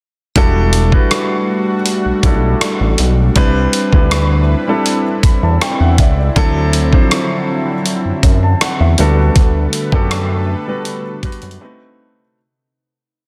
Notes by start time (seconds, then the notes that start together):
0.35 E1 G3 A3 D4 E4 F#4 A4, kick, closed hi-hat
0.73 closed hi-hat
0.92 G3 D4 E4 F#4 B4, kick
1.11 cross-stick, closed hi-hat
1.86 closed hi-hat
2.05 B1
2.23 B1 G3 D4 E4 F#4 A4, kick, closed hi-hat
2.61 cross-stick, closed hi-hat
2.80 A1
2.98 B1, closed hi-hat
3.36 C2 G3 C4 D4 E4 B4, kick, closed hi-hat
3.73 closed hi-hat
3.92 D2 G3 C4 D4 E4 B4, kick
4.11 cross-stick, closed hi-hat
4.67 G3 C4 D4 E4 A4
4.86 closed hi-hat
5.23 E2 B5, kick, closed hi-hat
5.43 E2 A5
5.61 G5, cross-stick, closed hi-hat
5.80 E2 F#5
5.98 C#2 D5 E5, kick, closed hi-hat
6.18 D5
6.36 D2 D3 F#3 C4 D4 E4 A4, kick, closed hi-hat
6.73 closed hi-hat
6.92 F3 C4 D4 E4 C5, kick
6.99 F#3
7.11 cross-stick, closed hi-hat
7.86 closed hi-hat
8.05 F#2
8.23 F#2, kick, closed hi-hat
8.43 A5
8.61 F#5, cross-stick, closed hi-hat
8.80 E2 E5
8.98 D2 D3 G3 A3 B3 D4 F#4 A4 B4, closed hi-hat
9.36 D2, kick, closed hi-hat
9.73 closed hi-hat
9.92 F#2 B3 D4 F#4 G4 A4, kick
10.11 cross-stick, closed hi-hat
10.67 G3 B3 D4 F#4 B4
10.85 closed hi-hat
11.23 F#2 G3 B3 D4 F#4 B4, kick, closed hi-hat
11.32 closed hi-hat
11.42 F#2, closed hi-hat
11.51 closed hi-hat
11.61 A3 C4 D#4 F#4 B4